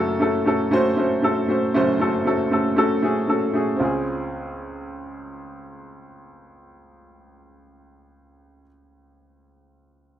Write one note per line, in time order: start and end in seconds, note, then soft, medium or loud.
0.00 1.71 F#1 medium
0.00 1.71 F#2 medium
0.00 0.14 A3 medium
0.00 0.14 C#4 medium
0.00 0.21 F#4 medium
0.00 0.22 A4 loud
0.20 0.39 A3 medium
0.20 0.40 C#4 medium
0.20 0.40 F#4 medium
0.20 0.40 A4 medium
0.46 0.65 A3 medium
0.46 0.65 C#4 medium
0.46 0.66 F#4 medium
0.46 0.66 A4 medium
0.71 0.91 A3 medium
0.71 0.91 C#4 medium
0.71 0.91 F#4 medium
0.71 0.92 C5 medium
0.97 1.16 A3 medium
0.97 1.17 C#4 medium
0.97 1.17 F#4 medium
0.97 1.17 C5 medium
1.22 1.42 A3 medium
1.22 1.42 C#4 medium
1.22 1.43 F#4 medium
1.22 1.43 A4 medium
1.48 1.68 A3 medium
1.48 1.68 C#4 medium
1.48 1.68 F#4 medium
1.48 1.69 C5 medium
1.74 3.76 F#1 medium
1.74 3.76 F#2 medium
1.74 1.94 A3 medium
1.74 1.94 C#4 medium
1.74 1.94 F#4 medium
1.74 1.95 C5 medium
2.00 2.19 A3 medium
2.00 2.19 C#4 medium
2.00 2.20 F#4 medium
2.00 2.20 A4 medium
2.25 2.45 A3 medium
2.25 2.45 C#4 medium
2.25 2.45 F#4 medium
2.25 2.46 A4 medium
2.51 2.71 A3 medium
2.51 2.71 C#4 medium
2.51 2.71 F#4 medium
2.51 2.72 A4 medium
2.76 2.96 A3 medium
2.76 2.96 C#4 medium
2.76 2.97 F#4 medium
2.76 2.97 A4 medium
3.02 3.22 A3 medium
3.02 3.22 C#4 medium
3.02 3.23 F#4 medium
3.02 3.23 G#4 medium
3.27 3.47 A3 medium
3.27 3.48 C#4 medium
3.27 3.48 F#4 medium
3.27 3.48 A4 medium
3.53 3.73 A3 medium
3.53 3.73 C#4 soft
3.53 3.74 F#4 medium
3.53 3.74 G#4 medium
3.76 8.64 C#2 medium
3.76 8.60 C4 medium
3.76 8.63 C#4 medium
3.81 8.65 F4 medium
3.81 8.68 G#4 medium